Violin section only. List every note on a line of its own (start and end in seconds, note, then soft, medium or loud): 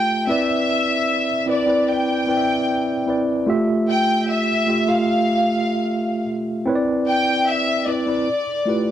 0.00 0.29 G5 medium
0.29 1.45 E5 medium
1.51 1.89 D5 medium
1.90 3.09 G5 medium
3.91 4.26 G5 loud
4.30 4.89 E5 medium
4.89 6.28 F5 medium
7.09 7.45 G5 medium
7.48 7.87 E5 medium
7.88 8.91 D5 medium